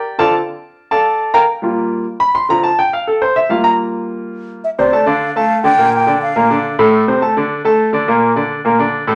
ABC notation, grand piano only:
X:1
M:4/4
L:1/8
Q:1/4=210
K:Dm
V:1 name="Grand piano"
[Gdg] [Adfa] z4 [Adfa]2- | [Adfa] [Bfgb] z4 z =b | c' b a g f A c e | f b z6 |
z [C,Cc] [A,Aa] [D,Dd]2 [A,Aa]2 [D,Dd] | [B,,B,B]2 [D,Dd]2 [B,,B,B] [D,Dd]2 [A,,A,A]- | [A,,A,A] [C,Cc] [A,Aa] [D,Dd]2 [A,Aa]2 [D,Dd] | [B,,B,B]2 [D,Dd]2 [B,,B,B] [D,Dd]2 [A,,A,A] |]
V:2 name="Grand piano"
z [D,CF] z6 | z3 [G,B,F]3 z2 | z [D,CF] z6 | [G,B,F]8 |
z8 | z8 | z8 | z8 |]